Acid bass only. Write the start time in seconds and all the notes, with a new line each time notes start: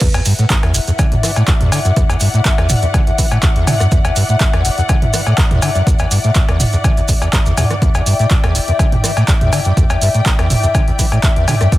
0.01 E2
0.14 E2
0.26 G2
0.39 A2
0.50 E2
0.63 E2
0.75 E1
0.88 E2
0.99 D3
1.12 E2
1.23 E3
1.36 A2
1.48 E2
1.61 E2
1.72 D3
1.85 F#2
1.97 E2
2.10 E2
2.21 G2
2.34 A2
2.45 E2
2.58 E2
2.70 E1
2.83 E2
2.94 D3
3.07 E2
3.18 E3
3.31 A2
3.43 E2
3.56 E2
3.67 D3
3.80 F#2
3.92 E2
4.05 E2
4.16 G2
4.29 A2
4.41 E2
4.54 E2
4.65 E1
4.78 E2
4.89 D3
5.02 E2
5.14 E3
5.27 A2
5.38 E2
5.51 E2
5.62 D3
5.75 F#2
5.87 E2
6.00 E2
6.11 G2
6.24 A2
6.36 E2
6.49 E2
6.60 E1
6.73 E2
6.84 D3
6.97 E2
7.09 E2
7.22 E2
7.33 E2
7.46 E2
7.58 E2
7.71 E3
7.82 E2
7.95 E2
8.06 G2
8.19 A2
8.31 E2
8.44 E2
8.55 E1
8.68 E2
8.80 D3
8.92 E2
9.04 E3
9.17 A2
9.28 E2
9.41 E2
9.53 D3
9.66 F#2
9.77 E2
9.90 E2
10.02 G2
10.14 A2
10.26 E2
10.39 E2
10.50 E1
10.63 E2
10.75 D3
10.88 E2
10.99 E3
11.12 A2
11.23 E2
11.36 E2
11.48 D3
11.61 F#2
11.72 E2